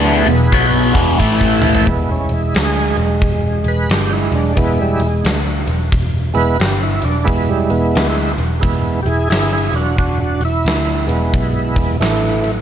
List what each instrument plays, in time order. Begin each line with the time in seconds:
Already playing: picked electric bass D2, overdriven electric guitar D3 A3 D4, tonewheel organ B3 E4 G#4 B4
0.26 picked electric bass E1, overdriven electric guitar E2 B2, open hi-hat
0.52 picked electric bass B1, overdriven electric guitar B2 F#3 B3, kick, open hi-hat
0.94 picked electric bass E1, overdriven electric guitar E2 B2 E3, kick, open hi-hat
1.18 picked electric bass A1, overdriven electric guitar A2 E3 A3, tonewheel organ A3 E4 A4 E5, kick
1.41 kick
1.62 mid tom
1.75 floor tom
1.86 picked electric bass E1, tonewheel organ G#3 B3 E4, kick, open hi-hat
2.11 tonewheel organ C#4
2.29 picked electric bass E1, tonewheel organ E4, open hi-hat
2.55 picked electric bass D2, tonewheel organ G#4, snare, open hi-hat
2.97 picked electric bass E1, open hi-hat
3.22 picked electric bass E1, kick, open hi-hat
3.64 picked electric bass E1, open hi-hat
3.68 tonewheel organ B4
3.89 picked electric bass G1, tonewheel organ G4, snare, open hi-hat
4.13 tonewheel organ E4
4.32 picked electric bass E1, tonewheel organ D4, open hi-hat
4.55 picked electric bass E1, tonewheel organ G#3 B3 E4, kick, open hi-hat
4.81 tonewheel organ G3
5.00 picked electric bass E1, open hi-hat
5.04 tonewheel organ G#3
5.24 picked electric bass D2, snare, open hi-hat
5.67 picked electric bass E1, open hi-hat
5.92 picked electric bass E1, kick, open hi-hat
6.34 picked electric bass E1, tonewheel organ G#3 B3 E4 B4, open hi-hat
6.60 picked electric bass G1, tonewheel organ G4, snare, open hi-hat
6.83 tonewheel organ E4
7.02 picked electric bass E1, tonewheel organ D4, open hi-hat
7.24 picked electric bass E1, tonewheel organ G#3 B3 E4, kick, open hi-hat
7.49 tonewheel organ G3
7.70 picked electric bass E1, tonewheel organ B3, open hi-hat
7.95 picked electric bass D2, snare, open hi-hat
8.38 picked electric bass E1, open hi-hat
8.60 picked electric bass E1, tonewheel organ G#3 B3 E4, kick, open hi-hat
9.02 picked electric bass E1, tonewheel organ E4 G4 G#4, open hi-hat
9.30 picked electric bass G1, tonewheel organ E4 G#4, snare, open hi-hat
9.53 tonewheel organ E4 G#4
9.72 picked electric bass E1, tonewheel organ D4, open hi-hat
9.76 tonewheel organ F#4
9.98 picked electric bass E1, tonewheel organ D4 F#4, kick, open hi-hat
10.20 tonewheel organ D4 F#4
10.40 picked electric bass E1, open hi-hat
10.45 tonewheel organ E4
10.65 picked electric bass D2, snare, open hi-hat
11.06 picked electric bass E1, tonewheel organ G#3 B3 E4, open hi-hat
11.34 picked electric bass B1, kick, open hi-hat
11.76 picked electric bass E1, kick, open hi-hat
12.00 picked electric bass A1, tonewheel organ E3 A3 E4, snare, open hi-hat
12.44 open hi-hat